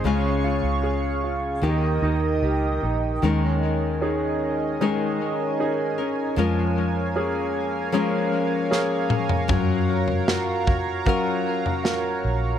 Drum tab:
SD |----------------|----------------|------------o---|----o-------o---|
T2 |----------------|----------------|--------------o-|----------------|
FT |----------------|----------------|---------------o|o--o--o----o----|
BD |----------------|----------------|----------------|o-----o-o-------|